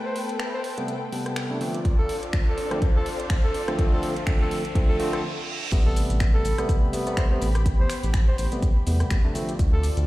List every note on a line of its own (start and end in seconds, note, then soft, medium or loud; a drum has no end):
0.00 1.57 A3 medium
0.00 1.57 B3 medium
0.00 1.59 A4 medium
0.00 2.34 A4 medium
0.00 1.57 B4 medium
0.00 1.61 B4 medium
0.00 2.71 G5 medium
0.00 riser medium
0.05 0.21 C5 medium
0.16 open hi-hat loud
0.29 closed hi-hat medium
0.40 finger snap loud
0.40 closed hi-hat soft
0.54 0.60 C5 medium
0.64 0.73 C5 medium
0.64 open hi-hat medium
0.78 0.93 C3 medium
0.78 0.93 G3 medium
0.78 0.93 A3 medium
0.78 0.93 B3 medium
0.78 closed hi-hat soft
0.88 closed hi-hat medium
1.12 1.47 C3 medium
1.12 1.47 G3 medium
1.12 1.47 A3 medium
1.12 1.47 B3 medium
1.12 open hi-hat loud
1.26 cross-stick medium
1.26 closed hi-hat soft
1.36 finger snap loud
1.36 closed hi-hat medium
1.50 1.59 C3 medium
1.50 1.59 G3 medium
1.50 1.59 A3 medium
1.50 1.59 D4 medium
1.61 1.78 D3 medium
1.61 1.78 F3 medium
1.61 1.78 A3 medium
1.61 5.20 C4 medium
1.61 1.78 C4 medium
1.61 5.24 D4 medium
1.61 5.20 F4 medium
1.61 5.20 D5 medium
1.61 open hi-hat medium
1.74 closed hi-hat medium
1.79 5.24 C5 medium
1.85 kick loud
1.85 closed hi-hat medium
1.99 2.15 A4 medium
2.09 open hi-hat loud
2.19 5.24 F5 medium
2.23 closed hi-hat medium
2.33 finger snap loud
2.33 kick loud
2.33 closed hi-hat soft
2.47 2.80 A4 medium
2.58 open hi-hat loud
2.71 2.80 D3 medium
2.71 2.80 F3 medium
2.71 2.80 A3 medium
2.71 2.80 C4 medium
2.71 cross-stick medium
2.71 closed hi-hat medium
2.82 kick loud
2.82 closed hi-hat medium
2.96 3.11 A4 medium
3.06 open hi-hat loud
3.20 closed hi-hat soft
3.30 finger snap loud
3.30 kick loud
3.30 closed hi-hat medium
3.44 3.77 A4 medium
3.54 open hi-hat loud
3.68 3.77 D3 medium
3.68 3.77 F3 medium
3.68 3.77 A3 medium
3.68 3.77 C4 loud
3.68 cross-stick medium
3.68 closed hi-hat medium
3.78 4.13 D3 medium
3.78 4.13 F3 medium
3.78 4.13 A3 medium
3.78 4.13 C4 loud
3.78 kick loud
3.78 closed hi-hat medium
3.92 4.08 A4 medium
4.03 open hi-hat loud
4.16 closed hi-hat soft
4.27 4.61 D3 loud
4.27 4.62 F3 medium
4.27 4.62 A3 medium
4.27 4.62 C4 loud
4.27 finger snap loud
4.27 kick loud
4.27 closed hi-hat soft
4.41 4.57 A4 medium
4.51 open hi-hat loud
4.65 closed hi-hat soft
4.75 4.98 D3 loud
4.75 4.98 F3 medium
4.75 4.98 A3 medium
4.75 4.98 C4 loud
4.75 kick loud
4.75 closed hi-hat medium
4.75 reverse cymbal medium
4.89 4.98 A4 medium
4.99 5.22 D3 loud
4.99 5.22 F3 medium
4.99 5.22 A3 medium
4.99 5.22 C4 loud
4.99 open hi-hat loud
5.13 5.22 A4 medium
5.13 cross-stick medium
5.13 closed hi-hat soft
5.72 6.03 A1 loud
5.72 6.45 C3 loud
5.72 6.45 G3 medium
5.72 6.45 A3 medium
5.72 9.31 B3 medium
5.72 6.45 B3 loud
5.72 10.07 G4 medium
5.72 9.31 G4 medium
5.72 9.31 B5 loud
5.72 kick loud
5.72 closed hi-hat medium
5.72 crash loud
5.72 shaker soft
5.86 6.02 A4 medium
5.96 open hi-hat loud
5.96 shaker medium
6.10 6.39 A1 medium
6.10 closed hi-hat medium
6.10 shaker soft
6.20 finger snap loud
6.20 kick loud
6.20 closed hi-hat soft
6.20 shaker soft
6.25 9.35 B5 medium
6.34 6.69 A4 loud
6.45 6.54 A1 medium
6.45 open hi-hat medium
6.45 shaker medium
6.58 6.91 C3 medium
6.58 6.91 G3 medium
6.58 6.91 A3 medium
6.58 6.91 B3 loud
6.58 cross-stick medium
6.58 closed hi-hat medium
6.58 shaker soft
6.69 kick loud
6.69 closed hi-hat medium
6.69 shaker soft
6.93 7.05 C3 medium
6.93 7.05 G3 medium
6.93 7.05 A3 medium
6.93 7.05 B3 medium
6.93 open hi-hat loud
6.93 shaker medium
7.07 7.27 C3 medium
7.07 7.27 G3 medium
7.07 7.27 A3 medium
7.07 7.27 B3 medium
7.07 closed hi-hat medium
7.07 shaker soft
7.17 7.26 C5 medium
7.17 finger snap loud
7.17 kick loud
7.17 closed hi-hat medium
7.17 shaker soft
7.31 7.46 C3 medium
7.31 7.46 G3 medium
7.31 7.46 A3 medium
7.31 7.46 B3 loud
7.31 7.38 C5 medium
7.42 7.72 A1 medium
7.42 open hi-hat loud
7.42 shaker medium
7.55 cross-stick medium
7.55 closed hi-hat medium
7.55 shaker soft
7.66 kick loud
7.66 closed hi-hat medium
7.66 shaker soft
7.79 7.86 A1 medium
7.79 7.95 C5 medium
7.90 finger snap medium
7.90 open hi-hat loud
7.90 shaker medium
8.03 8.33 A1 medium
8.03 closed hi-hat medium
8.03 shaker soft
8.14 finger snap loud
8.14 kick loud
8.14 closed hi-hat soft
8.14 shaker soft
8.28 8.35 C5 medium
8.38 8.48 A1 medium
8.38 8.47 C5 medium
8.38 open hi-hat loud
8.38 shaker medium
8.52 8.67 C3 medium
8.52 8.67 G3 medium
8.52 8.67 A3 medium
8.52 8.67 B3 medium
8.52 closed hi-hat medium
8.52 shaker soft
8.62 kick loud
8.62 closed hi-hat medium
8.62 shaker soft
8.87 9.04 E2 medium
8.87 9.21 C3 medium
8.87 9.21 G3 medium
8.87 9.21 A3 medium
8.87 9.21 B3 medium
8.87 open hi-hat loud
8.87 shaker medium
9.00 cross-stick medium
9.00 closed hi-hat medium
9.00 shaker soft
9.11 9.20 A1 medium
9.11 finger snap loud
9.11 kick loud
9.11 closed hi-hat medium
9.11 shaker soft
9.24 9.34 C3 medium
9.24 9.34 G3 medium
9.24 9.34 A3 medium
9.24 9.34 D4 medium
9.35 9.52 D3 medium
9.35 9.52 F3 medium
9.35 9.52 A3 medium
9.35 10.07 C4 medium
9.35 9.52 C4 medium
9.35 10.07 F4 medium
9.35 10.07 D5 loud
9.35 open hi-hat loud
9.35 shaker medium
9.49 closed hi-hat medium
9.49 shaker soft
9.59 9.90 D2 loud
9.59 kick loud
9.59 closed hi-hat medium
9.59 shaker soft
9.73 9.89 A4 medium
9.83 open hi-hat loud
9.83 shaker medium
9.88 10.07 D5 medium
9.97 10.07 D2 medium
9.97 closed hi-hat medium
9.97 shaker soft